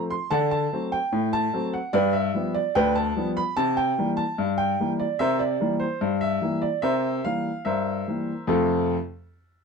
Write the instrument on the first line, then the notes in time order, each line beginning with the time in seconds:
upright piano
Already playing: F3 A3 C4
0.10 C6
0.31 D3 D5 F#5 A5
0.51 A5
0.73 F#3 A3 C4
0.92 G5
1.12 A2
1.33 A5
1.53 F#3 A3 C4
1.73 F#5
1.93 G2 G4 B4 D5
2.13 E5
2.34 F3 G3 B3
2.55 D5
2.75 D2 B4 D5 G5
2.95 A5
3.16 F3 G3 B3
3.37 B5
3.57 C3 A5
3.77 G5
3.98 E3 G3 A#3
4.17 A5
4.38 G2
4.58 G5
4.80 E3 G3 A#3
5.00 D5
5.19 C3 A#4 C5 E5
5.39 D5
5.60 E3 G3 A#3
5.80 C5
6.01 G2
6.21 E5
6.42 E3 G3 A#3
6.62 D5
6.82 C3 A#4 C5 E5
7.25 E3 G3 A#3 F5
7.65 G2 A#4 C5 E5
8.08 E3 G3 A#3
8.47 F2 C3 A3 C4 F4 A4 A5